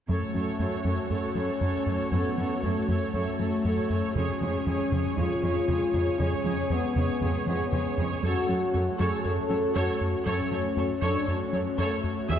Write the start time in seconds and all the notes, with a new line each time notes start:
0.09 F#2 F#3 A3 C#4 F#4 A4 C#5
0.34 F#2 F#3 C#4 A4 C#5
0.60 F#2 A3 A4 C#5
0.85 F#2 F#3 A4 C#5
1.10 F#2 A3 C#4 A4 C#5
1.35 F#2 F#3 C#4 A4 C#5
1.61 F#2 F#3 A4 C#5
1.86 F#2 A4 C#5
2.12 F#2 F#3 B3 A4 C#5
2.38 F#2 F#3 C#4 A4 C#5
2.63 F#2 A3 A4 C#5
2.89 F#2 F#3 A4 C#5
3.14 F#2 A3 A4 C#5
3.39 F#2 F#3 C#4 A4 C#5
3.65 F#2 F#3 A4 C#5
3.90 F#2 A4 C#5
4.15 F2 C#3 G#3 C#4 G#4 C#5
4.41 F2 F3 G#3 G#4 C#5
4.67 F2 F3 G#4 C#5
4.92 F2 C#3 G#4 C#5
5.17 F2 F3 F4 G#4 C#5
5.43 F2 F3 G#3 G#4 C#5
5.68 F2 C#3 G#4 C#5
5.94 F2 G#4 C#5
6.19 F2 C#3 C#4 G#4 C#5
6.44 F2 F3 G#3 G#4 C#5
6.70 F2 F3 B3 G#4 C#5
6.96 F2 C#3 G#4 C#5
7.21 F2 F3 G#4 C#5
7.46 F2 F3 G#3 G#4 C#5
7.72 F2 C#3 G#4 C#5
7.98 F2 G#4 C#5
8.23 F#2 F#3 A3 C#4 F#4 A4 C#5
8.48 F#2 F#3 C#4 A4 C#5
8.74 F#2 A3 A4 C#5
8.99 F#2 F#3 G#4 A4 C#5
9.24 F#2 A3 A4 C#5
9.50 F#2 F#3 C#4 A4 C#5
9.75 F#2 F#3 F#4 A4 C#5
10.01 F#2
10.26 F#2 F#3 C#4 A4 C#5
10.52 F#2 F#3 C#4 A4 C#5
10.77 F#2 A3 A4 C#5
11.02 F#2 F#3 D4 A4 C#5
11.27 F#2 A3 C#4 A4 C#5
11.53 F#2 F#3 C#4 A4 C#5
11.78 F#2 F#3 A3 A4 C#5
12.04 F#2
12.29 E2 E3 G#3 B3 E4 G#4 E5